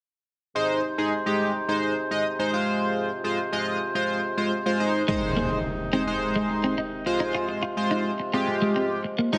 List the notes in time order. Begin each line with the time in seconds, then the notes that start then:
0.55 C3 G#3 D#4 C5
0.98 G#3 D#4 G#4
1.26 G#3 D#4 G4
1.68 G#3 D#4 C5
2.11 G#3 D#4 D#5
2.39 G#3 D#4 C5
2.53 G#3 F4 C5
3.24 G#3 F4 C5
3.52 G#3 F4 D#5
3.95 G#3 F4 C5
4.37 G#3 F4 C5
4.66 G#3 F4 C5
4.80 G#3 D#4 C5
5.08 C3 D#3 G#3 D#4 C5, impact
5.37 A#3
5.51 muted clean electric guitar stroke
5.93 G#3 C4 D#4 C5
6.07 G#3 D#4 C5
6.36 G#3
6.50 muted clean electric guitar stroke
6.64 C4
6.78 D#4
7.06 C3 F3 G#3 F4 C5, muted clean electric guitar stroke
7.20 D#4
7.35 F4
7.49 muted clean electric guitar stroke
7.63 F4
7.77 G#3 F4 C5
7.91 D#4
8.20 muted clean electric guitar stroke
8.33 G#3 C4 F4 G4
8.48 muted clean electric guitar stroke
8.62 G#3
8.76 C4
9.04 muted clean electric guitar stroke
9.19 A#3
9.33 C#3 F3 G#3 D#4 C#5